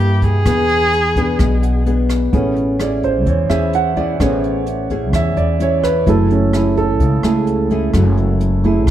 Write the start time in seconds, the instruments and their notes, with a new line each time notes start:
Already playing: upright bass G2, nylon-string guitar G2 G3 A#3 E4, viola G4, grand piano E5
0.22 viola G#4, grand piano G5, kick, closed hi-hat
0.46 upright bass E2, nylon-string guitar E3 B3 D4 G#4, kick, cross-stick, closed hi-hat
0.69 closed hi-hat
0.93 closed hi-hat
1.16 nylon-string guitar B3 D4 G#4, kick, closed hi-hat
1.39 upright bass B1, nylon-string guitar B2, kick, cross-stick, closed hi-hat
1.63 grand piano F#5, closed hi-hat
1.86 nylon-string guitar B3 D4 G#4, closed hi-hat
2.09 cross-stick, closed hi-hat
2.32 upright bass A1, nylon-string guitar A3 C#4 E4 G#4, grand piano B3 C#4, kick, closed hi-hat
2.56 closed hi-hat
2.79 nylon-string guitar C#4 E4 G#4, grand piano D5, cross-stick, closed hi-hat
3.03 grand piano C5, kick, closed hi-hat
3.26 upright bass E2, nylon-string guitar E3, grand piano C#5, kick, closed hi-hat
3.49 upright bass E2, nylon-string guitar C#4 E4 G#4, grand piano E5, cross-stick, closed hi-hat
3.73 grand piano F#5, closed hi-hat
3.96 nylon-string guitar C#4 E4 G#4, grand piano D5, kick, closed hi-hat
4.20 upright bass A1, nylon-string guitar A3 C#4 E4 G#4, grand piano B3 C#4 C#5, kick, cross-stick, closed hi-hat
4.44 closed hi-hat
4.67 closed hi-hat
4.90 nylon-string guitar C#4 E4 G#4, kick, closed hi-hat
5.13 upright bass E2, nylon-string guitar E3, grand piano E5, kick, cross-stick, closed hi-hat
5.37 upright bass E2, grand piano D5, closed hi-hat
5.59 nylon-string guitar C#4 E4 G#4, grand piano C#5, closed hi-hat
5.83 grand piano B4, kick, cross-stick, closed hi-hat
6.06 upright bass F#1, nylon-string guitar F#3 A3 E4 G#4, grand piano A3 E4 A4, kick, closed hi-hat
6.30 grand piano C#4, closed hi-hat
6.53 nylon-string guitar A3 E4 G#4, grand piano E4, cross-stick, closed hi-hat
6.77 grand piano A4, kick, closed hi-hat
7.00 upright bass C#2, nylon-string guitar C#3, kick, closed hi-hat
7.23 upright bass C#2, grand piano G#3 A3 E4, nylon-string guitar A3 E4 G#4, cross-stick, closed hi-hat
7.47 closed hi-hat
7.70 nylon-string guitar A3 E4 G#4, kick, closed hi-hat
7.94 upright bass F#1, nylon-string guitar F#3 A3 E4 G#4, kick, cross-stick, closed hi-hat
8.17 closed hi-hat
8.41 closed hi-hat
8.64 grand piano A3 E4, nylon-string guitar A3 E4 G#4, kick, closed hi-hat
8.87 upright bass C#2, nylon-string guitar C#3, kick, cross-stick, closed hi-hat